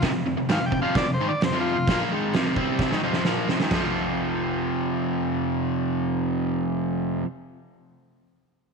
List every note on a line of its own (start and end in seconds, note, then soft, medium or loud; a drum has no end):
0.02 0.12 F2 medium
0.02 0.12 C3 loud
0.02 kick medium
0.02 snare loud
0.02 open hi-hat medium
0.13 0.25 F2 medium
0.13 0.25 C3 medium
0.26 0.36 F2 medium
0.26 0.36 C3 medium
0.37 0.48 F2 medium
0.37 0.49 C3 medium
0.49 0.60 G#2 medium
0.49 0.60 D#3 loud
0.49 0.65 F5 loud
0.49 snare loud
0.49 open hi-hat medium
0.60 0.70 F2 medium
0.60 0.71 C3 medium
0.66 0.80 G5 medium
0.71 0.81 F2 medium
0.71 0.81 C3 medium
0.71 kick medium
0.82 1.05 F2 medium
0.82 1.05 C3 loud
0.82 1.06 F3 loud
0.82 0.96 F5 loud
0.95 1.11 D5 medium
0.95 kick loud
0.95 snare loud
0.95 open hi-hat medium
1.07 1.19 F2 medium
1.07 1.19 C3 medium
1.14 1.27 C5 medium
1.21 1.30 G#2 medium
1.21 1.30 D#3 loud
1.28 1.42 D5 medium
1.28 muted overdriven electric guitar stroke medium
1.41 1.51 F2 medium
1.41 1.52 C3 medium
1.41 snare loud
1.41 open hi-hat medium
1.45 1.59 C5 medium
1.52 1.75 F2 medium
1.52 1.76 C3 medium
1.52 1.76 F3 loud
1.61 2.04 F4 loud
1.77 1.88 F2 medium
1.77 1.88 C3 medium
1.87 2.11 A#2 medium
1.87 2.11 F3 medium
1.87 2.12 A#3 medium
1.87 kick medium
1.87 snare loud
1.87 open hi-hat medium
2.11 2.33 G#2 medium
2.11 2.34 D#3 medium
2.11 2.34 G#3 loud
2.33 2.56 F2 medium
2.33 2.55 C3 medium
2.33 2.57 F3 medium
2.33 snare loud
2.33 open hi-hat medium
2.56 2.91 C3 medium
2.56 2.91 G3 loud
2.56 2.91 C4 loud
2.56 kick medium
2.79 kick loud
2.79 snare medium
2.91 3.02 G#2 medium
2.91 3.03 D#3 medium
2.91 snare medium
3.03 3.26 F2 medium
3.03 3.26 C3 medium
3.03 3.26 F3 medium
3.13 snare medium
3.25 3.48 A#2 medium
3.25 3.49 F3 medium
3.25 3.49 A#3 medium
3.25 snare medium
3.48 3.60 F2 medium
3.48 3.60 C3 loud
3.48 snare medium
3.60 3.71 G#2 medium
3.60 3.73 D#3 medium
3.60 snare medium
3.71 7.21 F2 medium
3.71 7.23 C3 medium
3.71 7.25 F3 medium
3.71 snare medium
3.71 floor tom medium
3.71 crash medium